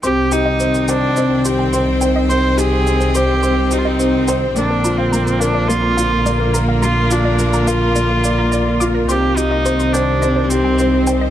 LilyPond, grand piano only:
\new Staff \with { instrumentName = "Grand piano" } { \time 4/4 \key c \minor \tempo 4 = 106 c'8 g'8 c'8 c''8 c'8 g'8 c'8 c''8 | c'8 g'8 c'8 c''8 c'8 g'8 c'8 c''8 | bes8 f'8 bes8 bes'8 bes8 f'8 bes8 bes'8 | bes8 f'8 bes8 bes'8 bes8 d''8 d''8 f'8 |
c'8 g'8 c'8 c''8 c'8 g'8 c'8 c''8 | }